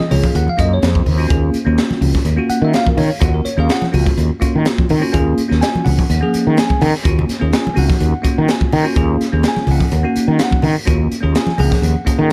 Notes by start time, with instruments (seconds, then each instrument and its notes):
0.00 tine electric piano D#5, muted fretless electric bass stroke, snare, high conga
0.09 fretless electric bass C#2, tine electric piano A#3 C#4 F4 G#4 C#5, open hi-hat, high conga, low conga
0.24 tine electric piano F5, kick, high conga
0.35 fretless electric bass D#2, tine electric piano F#5, closed hi-hat
0.48 tine electric piano F5, high conga
0.57 fretless electric bass F#2, tine electric piano A#3 C#4 F4 G#4 D#5, kick, closed hi-hat
0.74 tine electric piano C#5
0.82 fretless electric bass F2, tine electric piano C5, snare, closed hi-hat
0.95 kick
1.06 fretless electric bass D#2, open hi-hat, low conga
1.17 tine electric piano A#3 C#4 F4 F#4
1.28 fretless electric bass D#2, tine electric piano A#3 C#4 F4 G#4, kick, closed hi-hat
1.54 muted fretless electric bass stroke, closed hi-hat
1.65 fretless electric bass D#2, tine electric piano A#3 C#4 F4 F#4
1.78 snare, closed hi-hat
1.90 muted fretless electric bass stroke, snare, high conga
2.01 fretless electric bass C#2, open hi-hat, high conga, low conga
2.15 kick, snare, high conga
2.25 fretless electric bass D#2, closed hi-hat
2.36 tine electric piano A#3 C#4 F4 F#4
2.49 tine electric piano F#5, muted fretless electric bass stroke, closed hi-hat
2.62 fretless electric bass D#3, tine electric piano E5
2.73 tine electric piano F5, snare, closed hi-hat
2.86 tine electric piano A#4, muted fretless electric bass stroke, kick, high conga
2.97 fretless electric bass D#3, tine electric piano C#5, open hi-hat, low conga
3.10 tine electric piano F5
3.19 fretless electric bass D#2, tine electric piano A#3 C#4 F4 F#4 F#5, kick, closed hi-hat
3.34 tine electric piano A#4
3.45 tine electric piano C#5, closed hi-hat
3.57 fretless electric bass D#2, tine electric piano A#3 C#4 F4 G#4 F5
3.69 tine electric piano F#5, snare, closed hi-hat
3.82 muted fretless electric bass stroke, snare, high conga
3.92 fretless electric bass C#2, tine electric piano A#3 C#4 F4 F#4, open hi-hat, high conga, low conga
4.06 kick, high conga
4.18 fretless electric bass D#2, closed hi-hat
4.40 tine electric piano A#3 C#4 F4 F#4, muted fretless electric bass stroke, kick, closed hi-hat
4.55 fretless electric bass D#3
4.65 snare, closed hi-hat
4.78 muted fretless electric bass stroke, kick, high conga
4.89 fretless electric bass D#3, open hi-hat, low conga
5.00 tine electric piano A#3 C#4 F4 F#4
5.12 fretless electric bass D#2, tine electric piano A#3 C#4 F4 G#4, kick, closed hi-hat
5.38 muted fretless electric bass stroke, closed hi-hat
5.48 fretless electric bass D#2, tine electric piano A#3 C#4 F4 F#4, snare
5.61 tine electric piano G#5, snare, closed hi-hat
5.75 muted fretless electric bass stroke, high conga
5.85 fretless electric bass C#2, tine electric piano F#5, open hi-hat, high conga, low conga
5.98 kick, high conga
6.10 fretless electric bass D#2, closed hi-hat
6.21 tine electric piano F3 A#3 C#4 G#4
6.34 muted fretless electric bass stroke, closed hi-hat
6.47 fretless electric bass D#3
6.57 tine electric piano G#5, snare, closed hi-hat
6.70 muted fretless electric bass stroke, kick, high conga
6.81 fretless electric bass D#3, open hi-hat, low conga
6.95 snare
7.03 fretless electric bass D#2, tine electric piano A#3 C#4 F4 F#4, kick, closed hi-hat
7.19 low conga
7.29 muted fretless electric bass stroke, snare, closed hi-hat
7.40 fretless electric bass D#2, tine electric piano A#3 C#4 F4 G#4
7.53 tine electric piano G#5, snare, closed hi-hat
7.67 muted fretless electric bass stroke, high conga
7.74 fretless electric bass C#2, tine electric piano A#3 C#4 D#4 F#4, open hi-hat, high conga
7.79 tine electric piano F#5
7.90 kick, snare, high conga
8.00 fretless electric bass D#2, closed hi-hat
8.22 tine electric piano A#3 C#4 F4 F#4, muted fretless electric bass stroke, kick, closed hi-hat
8.38 fretless electric bass D#3
8.48 tine electric piano G#5, snare, closed hi-hat
8.61 muted fretless electric bass stroke, kick, high conga
8.73 fretless electric bass D#3, open hi-hat, low conga
8.83 tine electric piano A#3 C#4 F4 F#4
8.95 fretless electric bass D#2, tine electric piano A#3 C#4 F4 G#4, kick, closed hi-hat
9.21 snare, closed hi-hat
9.32 fretless electric bass D#2, tine electric piano A#3 C#4 F4 G#4
9.43 snare, closed hi-hat
9.48 tine electric piano G#5
9.56 muted fretless electric bass stroke, snare, high conga
9.67 fretless electric bass C#2, open hi-hat, high conga, low conga
9.71 tine electric piano F#5
9.80 kick, high conga
9.92 fretless electric bass D#2, closed hi-hat
10.03 tine electric piano A#3 C#4 D#4 F#4
10.16 muted fretless electric bass stroke, closed hi-hat
10.28 fretless electric bass D#3
10.39 tine electric piano F5, snare, closed hi-hat
10.44 tine electric piano F#5
10.51 muted fretless electric bass stroke, kick, high conga
10.62 fretless electric bass D#3, open hi-hat, low conga
10.85 fretless electric bass D#2, tine electric piano A#3 C#4 F4 F#4, kick, closed hi-hat
11.12 muted fretless electric bass stroke, closed hi-hat
11.21 fretless electric bass D#2, tine electric piano A#3 C#4 F4 G#4
11.35 tine electric piano G#5, snare, closed hi-hat
11.47 muted fretless electric bass stroke, snare, high conga
11.58 fretless electric bass C#2, tine electric piano F3 A#3 C#4 G#4 F#5, open hi-hat, high conga, low conga
11.72 kick, snare, high conga
11.82 fretless electric bass D#2, closed hi-hat
12.05 tine electric piano A#3 C#4 F4 G#4, muted fretless electric bass stroke, kick, closed hi-hat
12.19 fretless electric bass D#3